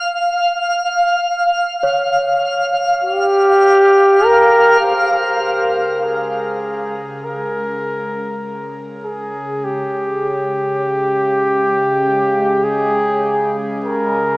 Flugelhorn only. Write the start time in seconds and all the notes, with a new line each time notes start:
3.04 G4
4.25 A#4
4.84 C5
6.05 G#4
7.24 A#4
9.04 G#4
9.64 G4
12.64 G#4
13.84 A#4